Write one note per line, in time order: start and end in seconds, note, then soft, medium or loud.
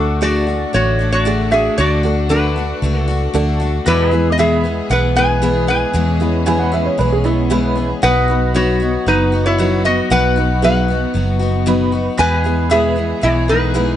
0.00 0.64 D2 medium
0.00 0.20 A3 soft
0.00 3.83 A3 medium
0.00 0.14 D4 medium
0.00 0.21 D4 medium
0.00 3.83 D4 medium
0.00 3.84 D4 medium
0.00 0.14 F#4 medium
0.00 0.22 F#4 medium
0.00 3.83 F#4 medium
0.00 0.14 A4 medium
0.00 0.19 A4 medium
0.00 0.24 F#5 loud
0.21 0.48 D3 medium
0.21 0.48 A3 medium
0.21 0.58 D4 medium
0.21 0.47 D4 medium
0.21 0.58 F#4 medium
0.21 0.45 F#4 medium
0.21 0.72 F#4 medium
0.21 0.58 G#4 medium
0.21 0.71 D5 loud
0.47 0.73 A3 soft
0.47 0.74 D4 soft
0.47 0.74 F#4 soft
0.73 1.68 A1 medium
0.73 1.00 D3 medium
0.73 1.00 A3 medium
0.73 0.99 D4 medium
0.73 1.11 F#4 medium
0.73 0.98 F#4 medium
0.73 1.12 C#5 medium
0.99 1.25 A3 soft
0.99 1.26 D4 medium
0.99 1.26 F#4 medium
1.12 1.50 F#4 medium
1.12 1.23 C#5 medium
1.23 1.52 D3 medium
1.23 1.52 A3 medium
1.23 1.62 D4 medium
1.23 1.52 D4 medium
1.23 1.63 F#4 medium
1.23 1.50 F#4 medium
1.23 1.63 G#4 medium
1.23 1.53 D5 medium
1.51 1.77 A3 soft
1.51 1.78 D4 soft
1.51 1.78 F#4 medium
1.51 1.77 G#4 medium
1.51 1.79 E5 medium
1.78 2.72 D2 loud
1.78 2.04 D3 medium
1.78 2.04 A3 medium
1.78 2.04 D4 medium
1.78 2.02 F#4 loud
1.78 2.27 F#4 medium
1.78 2.29 D5 loud
2.03 2.29 A3 soft
2.03 2.23 D4 medium
2.03 2.30 D4 medium
2.03 2.30 F#4 medium
2.03 2.23 F#4 medium
2.03 2.23 A4 medium
2.29 2.56 D3 medium
2.29 2.56 A3 medium
2.29 2.67 D4 medium
2.29 2.56 D4 medium
2.29 3.31 D4 medium
2.29 2.67 F#4 medium
2.29 2.55 F#4 medium
2.29 2.67 A4 medium
2.29 3.00 B4 medium
2.56 2.82 A3 soft
2.56 2.83 D4 soft
2.56 2.82 F#4 medium
2.82 3.27 C#2 medium
2.82 3.08 D3 medium
2.82 3.09 A3 medium
2.82 3.08 D4 medium
2.82 3.06 F#4 medium
3.00 3.30 A4 medium
3.08 3.33 A3 soft
3.08 3.34 D4 medium
3.08 3.34 F#4 medium
3.34 3.79 D2 medium
3.34 3.60 D3 medium
3.34 3.61 A3 loud
3.34 3.71 D4 medium
3.34 3.60 D4 loud
3.34 3.70 F#4 medium
3.34 3.58 F#4 loud
3.34 3.71 A4 loud
3.60 3.86 A3 medium
3.60 3.87 D4 medium
3.60 3.86 F#4 medium
3.86 4.12 E2 medium
3.86 4.80 E2 medium
3.86 4.12 B2 medium
3.86 4.13 E3 loud
3.86 7.99 E3 medium
3.86 4.12 G#3 medium
3.86 5.93 B3 medium
3.86 4.11 B3 medium
3.86 4.29 E4 medium
3.86 4.11 F#4 medium
3.86 7.98 G#4 medium
3.86 4.10 G#4 medium
3.86 4.13 A4 medium
3.86 4.29 B4 loud
3.86 4.13 D5 medium
4.11 4.37 E3 soft
4.11 4.38 G#3 soft
4.11 4.38 B3 medium
4.11 4.30 E4 medium
4.11 7.98 G#4 medium
4.11 4.38 G#4 medium
4.11 4.31 G#4 medium
4.11 7.99 B4 medium
4.11 4.31 B4 medium
4.11 7.99 E5 medium
4.32 4.39 D#5 medium
4.38 4.64 E2 medium
4.38 4.64 B2 medium
4.38 4.65 E3 medium
4.38 4.65 G#3 medium
4.38 4.64 B3 medium
4.38 4.74 E4 medium
4.38 4.75 G#4 medium
4.38 4.62 G#4 medium
4.38 4.88 G#4 medium
4.38 4.75 B4 medium
4.38 4.90 E5 medium
4.64 4.88 E3 soft
4.64 4.89 G#3 soft
4.64 4.90 B3 medium
4.64 4.90 G#4 medium
4.90 5.84 B1 medium
4.90 5.16 E3 medium
4.90 5.17 G#3 medium
4.90 5.16 B3 medium
4.90 5.14 G#4 medium
4.90 5.16 B4 medium
4.90 5.16 F#5 loud
5.16 5.41 E3 soft
5.16 5.42 G#3 soft
5.16 5.42 B3 medium
5.16 5.42 G#4 medium
5.16 5.66 B4 medium
5.16 5.67 G#5 loud
5.42 5.68 E2 medium
5.42 5.68 B2 medium
5.42 5.69 E3 medium
5.42 5.69 G#3 medium
5.42 5.67 B3 loud
5.42 5.78 E4 medium
5.42 5.79 G#4 medium
5.42 5.66 G#4 medium
5.42 5.79 B4 medium
5.67 5.93 E3 soft
5.67 5.94 G#3 soft
5.67 5.94 B3 medium
5.67 5.94 G#4 medium
5.67 6.69 B4 medium
5.67 6.68 G#5 medium
5.93 6.20 E2 medium
5.93 6.88 E2 loud
5.93 6.20 B2 medium
5.93 6.21 E3 loud
5.93 6.21 G#3 medium
5.93 6.20 B3 medium
5.93 8.00 C#4 medium
5.93 6.19 G#4 medium
6.20 6.46 E3 soft
6.20 6.46 G#3 soft
6.20 6.46 B3 medium
6.20 6.38 E4 medium
6.20 6.46 G#4 medium
6.20 6.39 G#4 medium
6.20 6.39 B4 medium
6.46 6.72 E2 medium
6.46 6.72 B2 medium
6.46 6.73 E3 medium
6.46 6.72 G#3 medium
6.46 6.72 B3 loud
6.46 6.83 E4 medium
6.46 6.83 G#4 medium
6.46 6.71 G#4 loud
6.46 6.83 B4 loud
6.46 6.59 G#5 loud
6.59 6.72 F#5 medium
6.72 6.96 E3 soft
6.72 6.97 G#3 soft
6.72 6.99 B3 medium
6.72 6.98 G#4 medium
6.72 6.85 E5 medium
6.86 6.98 C#5 medium
6.98 7.92 B1 medium
6.98 7.24 E3 medium
6.98 7.25 G#3 medium
6.98 7.24 B3 medium
6.98 7.23 G#4 medium
6.98 7.11 B4 medium
7.12 7.24 G#4 medium
7.24 7.49 E3 medium
7.24 7.50 G#3 medium
7.24 7.86 B3 medium
7.24 7.50 B3 medium
7.24 7.88 E4 medium
7.24 7.50 G#4 medium
7.50 7.76 E2 medium
7.50 7.76 B2 loud
7.50 7.77 E3 medium
7.50 7.76 G#3 loud
7.50 7.76 B3 medium
7.50 7.87 E4 medium
7.50 7.87 G#4 medium
7.50 7.74 G#4 loud
7.50 7.87 B4 loud
7.76 8.02 E3 soft
7.76 8.03 G#3 medium
7.76 8.02 B3 medium
7.76 8.02 G#4 medium
8.02 8.96 B1 loud
8.02 8.28 B2 medium
8.02 8.29 F#3 medium
8.02 12.15 F#3 medium
8.02 8.29 B3 medium
8.02 13.96 B3 medium
8.02 8.28 D#4 medium
8.02 12.15 F#4 medium
8.02 8.27 F#4 medium
8.02 8.52 B4 medium
8.02 12.15 B4 medium
8.02 12.16 D#5 medium
8.02 8.56 F#5 loud
8.28 8.54 B3 soft
8.28 8.47 D#4 medium
8.28 8.55 D#4 medium
8.28 8.54 F#4 medium
8.28 8.47 F#4 medium
8.28 8.47 B4 medium
8.54 8.81 B2 medium
8.54 8.81 F#3 medium
8.54 8.81 B3 medium
8.54 8.91 D#4 medium
8.54 8.80 D#4 medium
8.54 8.91 F#4 medium
8.54 9.04 F#4 medium
8.54 8.79 F#4 medium
8.54 8.91 B4 medium
8.54 9.08 C#5 medium
8.80 9.06 B3 soft
8.80 9.07 D#4 medium
8.80 9.06 F#4 medium
9.06 10.00 F#1 medium
9.06 9.33 F#3 medium
9.06 9.33 B3 medium
9.06 9.44 D#4 medium
9.06 9.32 D#4 medium
9.06 9.31 F#4 medium
9.06 9.47 B4 medium
9.32 9.58 B3 soft
9.32 9.59 D#4 medium
9.32 9.58 F#4 medium
9.46 9.82 E4 medium
9.46 9.85 C#5 medium
9.58 9.84 B2 medium
9.58 9.85 F#3 medium
9.58 9.85 B3 medium
9.58 9.95 D#4 medium
9.58 9.85 D#4 medium
9.58 9.95 F#4 medium
9.58 9.83 F#4 medium
9.58 9.95 B4 medium
9.85 10.10 B3 soft
9.85 10.11 D#4 soft
9.85 10.11 F#4 medium
9.85 10.09 F#4 medium
9.85 10.09 D#5 medium
10.10 11.04 B1 loud
10.10 10.36 B2 medium
10.10 10.37 F#3 medium
10.10 10.37 B3 loud
10.10 10.36 D#4 medium
10.10 10.35 F#4 medium
10.10 10.60 B4 medium
10.10 10.63 F#5 loud
10.36 10.62 B3 soft
10.36 10.55 D#4 medium
10.36 10.63 D#4 medium
10.36 10.62 F#4 medium
10.36 10.55 F#4 medium
10.36 10.55 B4 medium
10.62 10.89 B2 medium
10.62 10.89 F#3 medium
10.62 10.89 B3 medium
10.62 10.98 D#4 medium
10.62 10.89 D#4 medium
10.62 10.99 F#4 medium
10.62 10.87 F#4 medium
10.62 10.99 G#4 medium
10.62 11.64 B4 medium
10.62 11.63 F#5 medium
10.88 11.14 B3 soft
10.88 11.15 D#4 soft
10.88 11.15 F#4 medium
11.14 12.08 F#1 medium
11.14 11.40 F#3 medium
11.14 11.41 B3 medium
11.14 11.40 D#4 medium
11.14 11.38 F#4 medium
11.39 11.66 B3 medium
11.39 11.66 D#4 medium
11.39 11.66 F#4 medium
11.66 11.92 B2 medium
11.66 11.93 F#3 loud
11.66 11.93 B3 loud
11.66 12.03 D#4 medium
11.66 11.92 D#4 loud
11.66 12.03 F#4 medium
11.66 11.91 F#4 loud
11.66 12.03 B4 loud
11.92 12.18 B3 soft
11.92 12.19 D#4 medium
11.92 12.18 F#4 medium
12.18 12.44 E2 medium
12.18 13.12 E2 loud
12.18 12.44 B2 medium
12.18 12.45 E3 medium
12.18 13.96 E3 medium
12.18 12.45 G#3 medium
12.18 12.44 B3 loud
12.18 12.43 F#4 medium
12.18 12.43 G#4 loud
12.18 13.96 G#4 medium
12.18 13.96 B4 medium
12.18 12.68 B4 loud
12.18 12.40 G5 medium
12.18 12.73 G#5 loud
12.40 13.96 G#4 medium
12.40 13.96 G#5 medium
12.44 12.69 E3 medium
12.44 12.70 G#3 medium
12.44 12.70 B3 medium
12.44 12.63 E4 medium
12.44 12.70 G#4 medium
12.44 12.63 G#4 medium
12.44 12.63 B4 medium
12.70 12.96 E2 medium
12.70 12.97 B2 medium
12.70 12.97 E3 medium
12.70 12.97 G#3 medium
12.70 12.96 B3 loud
12.70 13.07 E4 medium
12.70 13.07 G#4 medium
12.70 12.95 G#4 medium
12.70 13.20 G#4 medium
12.70 13.07 B4 medium
12.70 13.25 E5 loud
12.96 13.20 E3 soft
12.96 13.21 G#3 medium
12.96 13.22 B3 medium
12.96 13.22 G#4 medium
13.21 13.96 B1 medium
13.21 13.48 E3 medium
13.21 13.49 G#3 medium
13.21 13.48 B3 medium
13.21 13.48 E4 medium
13.21 13.47 G#4 medium
13.21 13.47 C#5 medium
13.48 13.74 E3 soft
13.48 13.74 G#3 medium
13.48 13.75 B3 medium
13.48 13.96 D#4 medium
13.48 13.74 G#4 medium
13.48 13.96 B4 medium
13.74 13.96 E2 medium
13.74 13.96 B2 medium
13.74 13.96 E3 medium
13.74 13.96 G#3 medium
13.74 13.96 B3 medium
13.74 13.96 E4 medium
13.74 13.96 G#4 medium
13.74 13.96 B4 medium